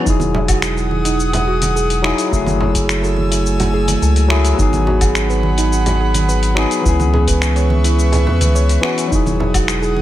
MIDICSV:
0, 0, Header, 1, 6, 480
1, 0, Start_track
1, 0, Tempo, 566038
1, 50, Time_signature, 4, 2, 24, 8
1, 8495, End_track
2, 0, Start_track
2, 0, Title_t, "Analog synth pad"
2, 0, Program_c, 0, 89
2, 53, Note_on_c, 0, 78, 78
2, 53, Note_on_c, 0, 87, 90
2, 56, Note_on_c, 0, 68, 84
2, 1952, Note_off_c, 0, 78, 0
2, 1952, Note_off_c, 0, 87, 0
2, 1954, Note_off_c, 0, 68, 0
2, 1969, Note_on_c, 0, 88, 100
2, 1971, Note_on_c, 0, 57, 83
2, 1971, Note_on_c, 0, 80, 80
2, 3870, Note_off_c, 0, 88, 0
2, 3871, Note_off_c, 0, 57, 0
2, 3871, Note_off_c, 0, 80, 0
2, 3885, Note_on_c, 0, 68, 88
2, 3885, Note_on_c, 0, 78, 84
2, 3885, Note_on_c, 0, 83, 92
2, 5788, Note_off_c, 0, 68, 0
2, 5788, Note_off_c, 0, 78, 0
2, 5789, Note_off_c, 0, 83, 0
2, 5808, Note_on_c, 0, 71, 88
2, 5808, Note_on_c, 0, 85, 101
2, 5809, Note_on_c, 0, 76, 80
2, 7710, Note_off_c, 0, 71, 0
2, 7710, Note_off_c, 0, 76, 0
2, 7710, Note_off_c, 0, 85, 0
2, 7731, Note_on_c, 0, 68, 85
2, 7732, Note_on_c, 0, 78, 79
2, 7733, Note_on_c, 0, 87, 95
2, 8495, Note_off_c, 0, 68, 0
2, 8495, Note_off_c, 0, 78, 0
2, 8495, Note_off_c, 0, 87, 0
2, 8495, End_track
3, 0, Start_track
3, 0, Title_t, "Synth pluck"
3, 0, Program_c, 1, 84
3, 51, Note_on_c, 1, 63, 82
3, 166, Note_off_c, 1, 63, 0
3, 291, Note_on_c, 1, 64, 103
3, 356, Note_off_c, 1, 64, 0
3, 412, Note_on_c, 1, 66, 78
3, 519, Note_off_c, 1, 66, 0
3, 652, Note_on_c, 1, 68, 74
3, 716, Note_off_c, 1, 68, 0
3, 891, Note_on_c, 1, 63, 76
3, 955, Note_off_c, 1, 63, 0
3, 1132, Note_on_c, 1, 64, 79
3, 1245, Note_off_c, 1, 64, 0
3, 1251, Note_on_c, 1, 66, 105
3, 1316, Note_off_c, 1, 66, 0
3, 1492, Note_on_c, 1, 68, 86
3, 1600, Note_off_c, 1, 68, 0
3, 1729, Note_on_c, 1, 63, 100
3, 1844, Note_off_c, 1, 63, 0
3, 1969, Note_on_c, 1, 64, 80
3, 2084, Note_off_c, 1, 64, 0
3, 2209, Note_on_c, 1, 66, 99
3, 2275, Note_off_c, 1, 66, 0
3, 2329, Note_on_c, 1, 68, 80
3, 2437, Note_off_c, 1, 68, 0
3, 2569, Note_on_c, 1, 69, 78
3, 2634, Note_off_c, 1, 69, 0
3, 2808, Note_on_c, 1, 64, 75
3, 2874, Note_off_c, 1, 64, 0
3, 3049, Note_on_c, 1, 66, 77
3, 3163, Note_off_c, 1, 66, 0
3, 3170, Note_on_c, 1, 68, 97
3, 3235, Note_off_c, 1, 68, 0
3, 3410, Note_on_c, 1, 69, 86
3, 3519, Note_off_c, 1, 69, 0
3, 3649, Note_on_c, 1, 64, 100
3, 3764, Note_off_c, 1, 64, 0
3, 3891, Note_on_c, 1, 63, 79
3, 4005, Note_off_c, 1, 63, 0
3, 4130, Note_on_c, 1, 66, 102
3, 4195, Note_off_c, 1, 66, 0
3, 4250, Note_on_c, 1, 68, 74
3, 4358, Note_off_c, 1, 68, 0
3, 4489, Note_on_c, 1, 71, 76
3, 4555, Note_off_c, 1, 71, 0
3, 4732, Note_on_c, 1, 63, 76
3, 4796, Note_off_c, 1, 63, 0
3, 4970, Note_on_c, 1, 66, 72
3, 5084, Note_off_c, 1, 66, 0
3, 5091, Note_on_c, 1, 68, 101
3, 5156, Note_off_c, 1, 68, 0
3, 5332, Note_on_c, 1, 71, 85
3, 5440, Note_off_c, 1, 71, 0
3, 5572, Note_on_c, 1, 63, 99
3, 5686, Note_off_c, 1, 63, 0
3, 5813, Note_on_c, 1, 64, 83
3, 5926, Note_off_c, 1, 64, 0
3, 6053, Note_on_c, 1, 68, 107
3, 6117, Note_off_c, 1, 68, 0
3, 6173, Note_on_c, 1, 71, 76
3, 6279, Note_off_c, 1, 71, 0
3, 6412, Note_on_c, 1, 73, 74
3, 6476, Note_off_c, 1, 73, 0
3, 6654, Note_on_c, 1, 64, 72
3, 6717, Note_off_c, 1, 64, 0
3, 6894, Note_on_c, 1, 68, 76
3, 7006, Note_off_c, 1, 68, 0
3, 7011, Note_on_c, 1, 71, 100
3, 7076, Note_off_c, 1, 71, 0
3, 7251, Note_on_c, 1, 73, 88
3, 7359, Note_off_c, 1, 73, 0
3, 7490, Note_on_c, 1, 64, 96
3, 7605, Note_off_c, 1, 64, 0
3, 7731, Note_on_c, 1, 63, 83
3, 7845, Note_off_c, 1, 63, 0
3, 7969, Note_on_c, 1, 64, 106
3, 8035, Note_off_c, 1, 64, 0
3, 8090, Note_on_c, 1, 66, 75
3, 8198, Note_off_c, 1, 66, 0
3, 8330, Note_on_c, 1, 68, 77
3, 8395, Note_off_c, 1, 68, 0
3, 8495, End_track
4, 0, Start_track
4, 0, Title_t, "Tine electric piano"
4, 0, Program_c, 2, 4
4, 0, Control_c, 2, 64, 127
4, 21, Note_on_c, 2, 54, 85
4, 42, Note_on_c, 2, 63, 75
4, 62, Control_c, 2, 64, 0
4, 64, Note_on_c, 2, 64, 81
4, 84, Note_on_c, 2, 68, 95
4, 191, Control_c, 2, 64, 127
4, 1687, Note_off_c, 2, 54, 0
4, 1698, Note_off_c, 2, 63, 0
4, 1708, Note_off_c, 2, 64, 0
4, 1716, Note_on_c, 2, 54, 91
4, 1719, Note_off_c, 2, 68, 0
4, 1725, Note_on_c, 2, 63, 86
4, 1738, Note_on_c, 2, 64, 87
4, 1746, Note_on_c, 2, 68, 103
4, 1928, Note_off_c, 2, 54, 0
4, 1938, Note_on_c, 2, 54, 82
4, 1939, Note_off_c, 2, 63, 0
4, 1945, Note_off_c, 2, 64, 0
4, 1949, Note_off_c, 2, 68, 0
4, 1960, Note_on_c, 2, 57, 84
4, 1982, Control_c, 2, 64, 0
4, 1982, Note_on_c, 2, 64, 77
4, 2002, Note_on_c, 2, 68, 99
4, 2124, Control_c, 2, 64, 127
4, 3605, Note_off_c, 2, 54, 0
4, 3616, Note_off_c, 2, 57, 0
4, 3627, Note_off_c, 2, 64, 0
4, 3630, Note_on_c, 2, 54, 93
4, 3637, Note_off_c, 2, 68, 0
4, 3640, Note_on_c, 2, 57, 83
4, 3651, Note_on_c, 2, 64, 91
4, 3662, Note_on_c, 2, 68, 104
4, 3845, Note_off_c, 2, 54, 0
4, 3855, Note_on_c, 2, 54, 82
4, 3857, Note_off_c, 2, 57, 0
4, 3862, Note_off_c, 2, 64, 0
4, 3868, Note_off_c, 2, 68, 0
4, 3876, Note_on_c, 2, 59, 82
4, 3897, Note_on_c, 2, 63, 78
4, 3902, Control_c, 2, 64, 0
4, 3919, Note_on_c, 2, 68, 99
4, 4058, Control_c, 2, 64, 127
4, 5524, Note_off_c, 2, 54, 0
4, 5535, Note_off_c, 2, 59, 0
4, 5545, Note_off_c, 2, 63, 0
4, 5553, Note_on_c, 2, 54, 102
4, 5556, Note_off_c, 2, 68, 0
4, 5565, Note_on_c, 2, 59, 85
4, 5574, Note_on_c, 2, 63, 83
4, 5586, Note_on_c, 2, 68, 108
4, 5773, Note_off_c, 2, 54, 0
4, 5777, Note_on_c, 2, 52, 87
4, 5779, Note_off_c, 2, 59, 0
4, 5784, Note_off_c, 2, 63, 0
4, 5789, Note_off_c, 2, 68, 0
4, 5798, Note_on_c, 2, 59, 77
4, 5819, Note_on_c, 2, 61, 84
4, 5820, Control_c, 2, 64, 0
4, 5841, Note_on_c, 2, 68, 98
4, 5975, Control_c, 2, 64, 127
4, 7445, Note_off_c, 2, 52, 0
4, 7456, Note_off_c, 2, 59, 0
4, 7466, Note_off_c, 2, 61, 0
4, 7474, Note_on_c, 2, 52, 95
4, 7477, Note_off_c, 2, 68, 0
4, 7484, Note_on_c, 2, 59, 83
4, 7495, Note_on_c, 2, 61, 83
4, 7505, Note_on_c, 2, 66, 98
4, 7694, Note_off_c, 2, 52, 0
4, 7698, Note_on_c, 2, 54, 87
4, 7699, Note_off_c, 2, 59, 0
4, 7704, Note_off_c, 2, 61, 0
4, 7709, Note_off_c, 2, 66, 0
4, 7719, Note_on_c, 2, 63, 78
4, 7740, Control_c, 2, 64, 0
4, 7741, Note_on_c, 2, 64, 79
4, 7761, Note_on_c, 2, 68, 90
4, 7865, Control_c, 2, 64, 127
4, 8495, Note_off_c, 2, 54, 0
4, 8495, Note_off_c, 2, 63, 0
4, 8495, Note_off_c, 2, 64, 0
4, 8495, Note_off_c, 2, 68, 0
4, 8495, End_track
5, 0, Start_track
5, 0, Title_t, "Analog synth bass"
5, 0, Program_c, 3, 38
5, 53, Note_on_c, 3, 28, 104
5, 1807, Note_off_c, 3, 28, 0
5, 1970, Note_on_c, 3, 30, 97
5, 3365, Note_off_c, 3, 30, 0
5, 3408, Note_on_c, 3, 37, 105
5, 3844, Note_off_c, 3, 37, 0
5, 3889, Note_on_c, 3, 32, 100
5, 5644, Note_off_c, 3, 32, 0
5, 5812, Note_on_c, 3, 37, 93
5, 7010, Note_on_c, 3, 40, 82
5, 7023, Note_off_c, 3, 37, 0
5, 7130, Note_on_c, 3, 37, 94
5, 7143, Note_off_c, 3, 40, 0
5, 7445, Note_off_c, 3, 37, 0
5, 7732, Note_on_c, 3, 28, 100
5, 8495, Note_off_c, 3, 28, 0
5, 8495, End_track
6, 0, Start_track
6, 0, Title_t, "Drums"
6, 53, Note_on_c, 9, 36, 117
6, 56, Note_on_c, 9, 69, 53
6, 138, Note_off_c, 9, 36, 0
6, 141, Note_off_c, 9, 69, 0
6, 168, Note_on_c, 9, 63, 85
6, 177, Note_on_c, 9, 69, 33
6, 252, Note_off_c, 9, 63, 0
6, 262, Note_off_c, 9, 69, 0
6, 293, Note_on_c, 9, 64, 100
6, 378, Note_off_c, 9, 64, 0
6, 410, Note_on_c, 9, 42, 55
6, 410, Note_on_c, 9, 77, 56
6, 413, Note_on_c, 9, 36, 100
6, 416, Note_on_c, 9, 69, 67
6, 495, Note_off_c, 9, 42, 0
6, 495, Note_off_c, 9, 77, 0
6, 498, Note_off_c, 9, 36, 0
6, 501, Note_off_c, 9, 69, 0
6, 529, Note_on_c, 9, 26, 80
6, 534, Note_on_c, 9, 69, 53
6, 613, Note_off_c, 9, 26, 0
6, 619, Note_off_c, 9, 69, 0
6, 657, Note_on_c, 9, 69, 32
6, 742, Note_off_c, 9, 69, 0
6, 772, Note_on_c, 9, 63, 59
6, 857, Note_off_c, 9, 63, 0
6, 892, Note_on_c, 9, 42, 59
6, 897, Note_on_c, 9, 69, 63
6, 976, Note_off_c, 9, 42, 0
6, 982, Note_off_c, 9, 69, 0
6, 1017, Note_on_c, 9, 69, 57
6, 1102, Note_off_c, 9, 69, 0
6, 1131, Note_on_c, 9, 42, 44
6, 1131, Note_on_c, 9, 64, 98
6, 1137, Note_on_c, 9, 69, 32
6, 1215, Note_off_c, 9, 64, 0
6, 1216, Note_off_c, 9, 42, 0
6, 1222, Note_off_c, 9, 69, 0
6, 1371, Note_on_c, 9, 42, 60
6, 1374, Note_on_c, 9, 63, 83
6, 1377, Note_on_c, 9, 69, 69
6, 1456, Note_off_c, 9, 42, 0
6, 1459, Note_off_c, 9, 63, 0
6, 1462, Note_off_c, 9, 69, 0
6, 1498, Note_on_c, 9, 69, 53
6, 1583, Note_off_c, 9, 69, 0
6, 1613, Note_on_c, 9, 42, 47
6, 1619, Note_on_c, 9, 69, 33
6, 1698, Note_off_c, 9, 42, 0
6, 1704, Note_off_c, 9, 69, 0
6, 1732, Note_on_c, 9, 26, 84
6, 1817, Note_off_c, 9, 26, 0
6, 1852, Note_on_c, 9, 42, 56
6, 1857, Note_on_c, 9, 69, 62
6, 1936, Note_off_c, 9, 42, 0
6, 1942, Note_off_c, 9, 69, 0
6, 1971, Note_on_c, 9, 36, 117
6, 1978, Note_on_c, 9, 69, 57
6, 2056, Note_off_c, 9, 36, 0
6, 2062, Note_off_c, 9, 69, 0
6, 2090, Note_on_c, 9, 63, 96
6, 2100, Note_on_c, 9, 69, 35
6, 2175, Note_off_c, 9, 63, 0
6, 2184, Note_off_c, 9, 69, 0
6, 2209, Note_on_c, 9, 64, 100
6, 2294, Note_off_c, 9, 64, 0
6, 2332, Note_on_c, 9, 36, 97
6, 2332, Note_on_c, 9, 42, 55
6, 2337, Note_on_c, 9, 69, 65
6, 2416, Note_off_c, 9, 42, 0
6, 2417, Note_off_c, 9, 36, 0
6, 2422, Note_off_c, 9, 69, 0
6, 2452, Note_on_c, 9, 26, 74
6, 2458, Note_on_c, 9, 69, 58
6, 2537, Note_off_c, 9, 26, 0
6, 2543, Note_off_c, 9, 69, 0
6, 2579, Note_on_c, 9, 69, 36
6, 2664, Note_off_c, 9, 69, 0
6, 2683, Note_on_c, 9, 63, 69
6, 2768, Note_off_c, 9, 63, 0
6, 2813, Note_on_c, 9, 42, 57
6, 2818, Note_on_c, 9, 69, 67
6, 2898, Note_off_c, 9, 42, 0
6, 2903, Note_off_c, 9, 69, 0
6, 2936, Note_on_c, 9, 69, 56
6, 3021, Note_off_c, 9, 69, 0
6, 3051, Note_on_c, 9, 42, 43
6, 3054, Note_on_c, 9, 64, 91
6, 3056, Note_on_c, 9, 69, 33
6, 3135, Note_off_c, 9, 42, 0
6, 3139, Note_off_c, 9, 64, 0
6, 3141, Note_off_c, 9, 69, 0
6, 3287, Note_on_c, 9, 63, 87
6, 3291, Note_on_c, 9, 42, 57
6, 3297, Note_on_c, 9, 69, 73
6, 3372, Note_off_c, 9, 63, 0
6, 3376, Note_off_c, 9, 42, 0
6, 3381, Note_off_c, 9, 69, 0
6, 3414, Note_on_c, 9, 69, 54
6, 3499, Note_off_c, 9, 69, 0
6, 3529, Note_on_c, 9, 42, 44
6, 3534, Note_on_c, 9, 69, 34
6, 3613, Note_off_c, 9, 42, 0
6, 3619, Note_off_c, 9, 69, 0
6, 3649, Note_on_c, 9, 26, 86
6, 3733, Note_off_c, 9, 26, 0
6, 3770, Note_on_c, 9, 42, 58
6, 3776, Note_on_c, 9, 69, 67
6, 3855, Note_off_c, 9, 42, 0
6, 3860, Note_off_c, 9, 69, 0
6, 3890, Note_on_c, 9, 36, 127
6, 3893, Note_on_c, 9, 69, 59
6, 3975, Note_off_c, 9, 36, 0
6, 3978, Note_off_c, 9, 69, 0
6, 4011, Note_on_c, 9, 63, 82
6, 4014, Note_on_c, 9, 69, 34
6, 4096, Note_off_c, 9, 63, 0
6, 4099, Note_off_c, 9, 69, 0
6, 4130, Note_on_c, 9, 64, 85
6, 4214, Note_off_c, 9, 64, 0
6, 4249, Note_on_c, 9, 42, 52
6, 4249, Note_on_c, 9, 77, 52
6, 4251, Note_on_c, 9, 36, 111
6, 4255, Note_on_c, 9, 69, 61
6, 4334, Note_off_c, 9, 42, 0
6, 4334, Note_off_c, 9, 77, 0
6, 4336, Note_off_c, 9, 36, 0
6, 4340, Note_off_c, 9, 69, 0
6, 4369, Note_on_c, 9, 26, 77
6, 4375, Note_on_c, 9, 69, 54
6, 4454, Note_off_c, 9, 26, 0
6, 4460, Note_off_c, 9, 69, 0
6, 4496, Note_on_c, 9, 69, 35
6, 4581, Note_off_c, 9, 69, 0
6, 4607, Note_on_c, 9, 63, 67
6, 4691, Note_off_c, 9, 63, 0
6, 4730, Note_on_c, 9, 42, 52
6, 4735, Note_on_c, 9, 69, 71
6, 4814, Note_off_c, 9, 42, 0
6, 4820, Note_off_c, 9, 69, 0
6, 4856, Note_on_c, 9, 69, 57
6, 4941, Note_off_c, 9, 69, 0
6, 4970, Note_on_c, 9, 42, 41
6, 4971, Note_on_c, 9, 64, 102
6, 4976, Note_on_c, 9, 69, 35
6, 5055, Note_off_c, 9, 42, 0
6, 5056, Note_off_c, 9, 64, 0
6, 5061, Note_off_c, 9, 69, 0
6, 5208, Note_on_c, 9, 63, 92
6, 5211, Note_on_c, 9, 42, 57
6, 5216, Note_on_c, 9, 69, 70
6, 5293, Note_off_c, 9, 63, 0
6, 5295, Note_off_c, 9, 42, 0
6, 5301, Note_off_c, 9, 69, 0
6, 5336, Note_on_c, 9, 69, 58
6, 5420, Note_off_c, 9, 69, 0
6, 5450, Note_on_c, 9, 42, 43
6, 5456, Note_on_c, 9, 69, 35
6, 5535, Note_off_c, 9, 42, 0
6, 5541, Note_off_c, 9, 69, 0
6, 5569, Note_on_c, 9, 26, 83
6, 5654, Note_off_c, 9, 26, 0
6, 5691, Note_on_c, 9, 42, 50
6, 5696, Note_on_c, 9, 69, 66
6, 5775, Note_off_c, 9, 42, 0
6, 5781, Note_off_c, 9, 69, 0
6, 5811, Note_on_c, 9, 36, 126
6, 5816, Note_on_c, 9, 69, 57
6, 5896, Note_off_c, 9, 36, 0
6, 5901, Note_off_c, 9, 69, 0
6, 5933, Note_on_c, 9, 63, 89
6, 5937, Note_on_c, 9, 69, 32
6, 6018, Note_off_c, 9, 63, 0
6, 6021, Note_off_c, 9, 69, 0
6, 6051, Note_on_c, 9, 64, 91
6, 6136, Note_off_c, 9, 64, 0
6, 6170, Note_on_c, 9, 42, 53
6, 6172, Note_on_c, 9, 36, 103
6, 6176, Note_on_c, 9, 69, 66
6, 6255, Note_off_c, 9, 42, 0
6, 6257, Note_off_c, 9, 36, 0
6, 6261, Note_off_c, 9, 69, 0
6, 6290, Note_on_c, 9, 26, 75
6, 6296, Note_on_c, 9, 69, 58
6, 6375, Note_off_c, 9, 26, 0
6, 6381, Note_off_c, 9, 69, 0
6, 6411, Note_on_c, 9, 42, 27
6, 6417, Note_on_c, 9, 69, 34
6, 6496, Note_off_c, 9, 42, 0
6, 6502, Note_off_c, 9, 69, 0
6, 6531, Note_on_c, 9, 63, 67
6, 6616, Note_off_c, 9, 63, 0
6, 6652, Note_on_c, 9, 42, 53
6, 6657, Note_on_c, 9, 69, 65
6, 6736, Note_off_c, 9, 42, 0
6, 6742, Note_off_c, 9, 69, 0
6, 6777, Note_on_c, 9, 69, 56
6, 6862, Note_off_c, 9, 69, 0
6, 6889, Note_on_c, 9, 64, 88
6, 6892, Note_on_c, 9, 42, 43
6, 6898, Note_on_c, 9, 69, 34
6, 6974, Note_off_c, 9, 64, 0
6, 6977, Note_off_c, 9, 42, 0
6, 6983, Note_off_c, 9, 69, 0
6, 7012, Note_on_c, 9, 64, 87
6, 7097, Note_off_c, 9, 64, 0
6, 7132, Note_on_c, 9, 42, 54
6, 7133, Note_on_c, 9, 63, 98
6, 7137, Note_on_c, 9, 69, 67
6, 7216, Note_off_c, 9, 42, 0
6, 7218, Note_off_c, 9, 63, 0
6, 7222, Note_off_c, 9, 69, 0
6, 7257, Note_on_c, 9, 69, 59
6, 7342, Note_off_c, 9, 69, 0
6, 7373, Note_on_c, 9, 42, 43
6, 7378, Note_on_c, 9, 69, 35
6, 7457, Note_off_c, 9, 42, 0
6, 7463, Note_off_c, 9, 69, 0
6, 7490, Note_on_c, 9, 26, 79
6, 7575, Note_off_c, 9, 26, 0
6, 7613, Note_on_c, 9, 42, 51
6, 7619, Note_on_c, 9, 69, 70
6, 7698, Note_off_c, 9, 42, 0
6, 7704, Note_off_c, 9, 69, 0
6, 7732, Note_on_c, 9, 36, 120
6, 7737, Note_on_c, 9, 69, 53
6, 7816, Note_off_c, 9, 36, 0
6, 7822, Note_off_c, 9, 69, 0
6, 7856, Note_on_c, 9, 63, 79
6, 7858, Note_on_c, 9, 69, 33
6, 7941, Note_off_c, 9, 63, 0
6, 7943, Note_off_c, 9, 69, 0
6, 7972, Note_on_c, 9, 64, 95
6, 8057, Note_off_c, 9, 64, 0
6, 8092, Note_on_c, 9, 36, 97
6, 8092, Note_on_c, 9, 42, 51
6, 8092, Note_on_c, 9, 77, 57
6, 8098, Note_on_c, 9, 69, 62
6, 8177, Note_off_c, 9, 36, 0
6, 8177, Note_off_c, 9, 42, 0
6, 8177, Note_off_c, 9, 77, 0
6, 8183, Note_off_c, 9, 69, 0
6, 8210, Note_on_c, 9, 26, 68
6, 8216, Note_on_c, 9, 69, 57
6, 8295, Note_off_c, 9, 26, 0
6, 8301, Note_off_c, 9, 69, 0
6, 8335, Note_on_c, 9, 69, 31
6, 8420, Note_off_c, 9, 69, 0
6, 8451, Note_on_c, 9, 63, 63
6, 8495, Note_off_c, 9, 63, 0
6, 8495, End_track
0, 0, End_of_file